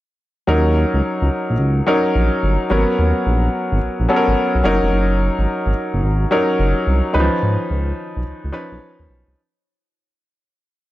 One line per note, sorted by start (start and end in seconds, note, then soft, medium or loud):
0.47 0.85 D#2 loud
0.47 1.52 F#3 medium
0.47 1.52 C#4 medium
0.47 1.53 D#4 medium
0.47 1.53 A#4 medium
0.94 1.02 C#2 medium
1.22 1.30 C#2 medium
1.50 1.58 A#1 medium
1.59 1.82 C#2 medium
1.87 2.65 F#3 medium
1.87 2.65 C#4 medium
1.87 2.66 D#4 medium
1.87 2.66 A#4 loud
2.15 2.30 A#1 medium
2.43 2.57 G1 medium
2.70 2.85 G#1 loud
2.70 3.75 F#3 medium
2.70 3.75 B3 medium
2.70 3.75 C#4 medium
2.70 3.75 A#4 medium
2.99 3.13 D#2 loud
3.26 3.49 A#1 loud
3.72 3.80 G#1 loud
3.82 3.89 A#1 soft
4.00 4.07 A#1 medium
4.09 4.62 F#3 medium
4.09 4.65 B3 medium
4.09 4.63 C#4 medium
4.09 4.18 A4 medium
4.16 4.64 A#4 medium
4.28 4.35 G#1 medium
4.55 4.63 B1 medium
4.64 4.79 F#1 loud
4.64 5.69 F#3 medium
4.64 5.69 C#4 medium
4.64 5.69 D#4 medium
4.64 5.70 A#4 loud
4.83 4.91 F1 medium
4.93 5.30 F#1 medium
5.39 5.46 G#1 loud
5.66 5.74 G#1 medium
5.94 6.02 F#1 medium
6.03 6.26 G#1 loud
6.31 7.10 F#3 medium
6.31 7.10 C#4 medium
6.31 7.10 D#4 medium
6.31 7.10 A#4 loud
6.59 6.74 F#1 loud
6.87 7.02 C2 medium
7.13 7.29 C#2 loud
7.13 7.22 D#3 medium
7.13 8.19 C#4 medium
7.13 8.19 D#4 medium
7.13 8.19 B4 medium
7.20 8.22 F3 medium
7.43 7.57 G#2 medium
7.70 7.93 C#2 medium
8.16 8.24 B1 medium
8.26 8.33 C#2 soft
8.44 8.52 C#2 medium
8.52 9.31 F3 medium
8.52 9.32 C#4 medium
8.52 9.32 D#4 medium
8.52 9.32 B4 medium
8.72 8.79 B1 medium
8.99 9.07 D#2 medium
9.09 9.24 B1 medium
9.27 9.35 C2 medium